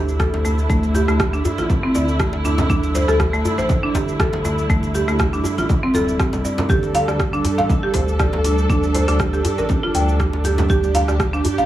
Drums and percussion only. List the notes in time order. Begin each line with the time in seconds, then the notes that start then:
0.08 cabasa
0.20 kick, cross-stick, djembe tone, cabasa
0.34 djembe slap, high conga
0.45 muted conga, djembe tone, cabasa
0.58 cabasa
0.69 kick, djembe tone, cabasa
0.83 muted conga, cabasa
0.94 djembe tone, cabasa
1.08 cross-stick, cabasa
1.20 kick, cross-stick, muted conga, djembe tone, cabasa
1.33 cabasa
1.45 djembe tone, djembe bass, cabasa
1.58 muted conga, high conga, cabasa
1.70 kick, djembe tone, low conga, cabasa
1.95 muted conga, high conga, djembe tone, cabasa
2.08 cabasa
2.19 kick, cross-stick, djembe tone, cabasa
2.33 djembe slap
2.45 muted conga, djembe tone, cabasa
2.58 djembe slap, low conga, djembe bass, cabasa
2.69 kick, high conga, djembe tone, cabasa
2.83 muted conga, cabasa
2.95 djembe tone, cabasa
3.08 cross-stick, cabasa
3.20 kick, cross-stick, muted conga, djembe tone, cabasa
3.34 cabasa
3.45 djembe tone, djembe bass, cabasa
3.58 muted conga, high conga, cabasa
3.69 kick, djembe tone, low conga, cabasa
3.95 kick, djembe slap, muted conga, djembe tone, low conga, cabasa
4.08 cabasa
4.20 kick, cross-stick, djembe tone, cabasa
4.33 djembe slap, high conga
4.45 muted conga, djembe tone, cabasa
4.58 cabasa
4.70 kick, djembe tone, cabasa
4.83 muted conga, cabasa
4.94 djembe tone, high conga, cabasa
5.08 cross-stick, cabasa
5.19 kick, cross-stick, muted conga, djembe tone, cabasa
5.33 cabasa
5.44 djembe tone, djembe bass, cabasa
5.58 muted conga, high conga, cabasa
5.69 kick, djembe tone, low conga, cabasa
5.94 muted conga, high conga, djembe tone, cabasa
6.08 cabasa
6.20 kick, cross-stick, djembe tone, cabasa
6.33 djembe slap, low conga, cabasa
6.45 muted conga, djembe tone, cabasa
6.58 djembe slap, djembe bass, low conga, cabasa
6.69 kick, high conga, djembe tone, cabasa
6.83 muted conga, cabasa
6.94 open hi-hat, djembe tone, cabasa
7.08 cross-stick, cabasa
7.20 kick, cross-stick, muted conga, djembe tone, cabasa
7.33 cabasa
7.45 open hi-hat, djembe tone, djembe bass, cabasa
7.58 muted conga, high conga, cabasa
7.70 kick, djembe tone, low conga, cabasa
7.94 kick, open hi-hat, djembe slap, muted conga, djembe tone, low conga, cabasa
8.08 cabasa
8.19 kick, cross-stick, djembe tone, cabasa
8.33 djembe slap, high conga
8.44 open hi-hat, muted conga, djembe tone, cabasa
8.58 cabasa
8.70 kick, djembe tone, cabasa
8.83 muted conga, cabasa
8.95 open hi-hat, djembe tone, cabasa
9.08 cross-stick, open hi-hat, cabasa
9.19 kick, cross-stick, muted conga, djembe tone, cabasa
9.34 cabasa
9.45 open hi-hat, djembe tone, djembe bass, cabasa
9.58 muted conga, high conga, cabasa
9.69 kick, djembe tone, low conga, cabasa
9.94 open hi-hat, muted conga, high conga, djembe tone, cabasa
10.09 cabasa
10.19 kick, cross-stick, djembe tone, cabasa
10.33 djembe slap
10.44 open hi-hat, muted conga, djembe tone, cabasa
10.58 djembe slap, djembe bass, low conga, cabasa
10.69 kick, high conga, djembe tone, cabasa
10.84 muted conga, cabasa
10.95 open hi-hat, djembe tone, cabasa
11.08 cross-stick, cabasa
11.20 kick, cross-stick, muted conga, djembe tone, cabasa
11.34 cabasa
11.44 open hi-hat, djembe tone, djembe bass, cabasa
11.58 muted conga, high conga, cabasa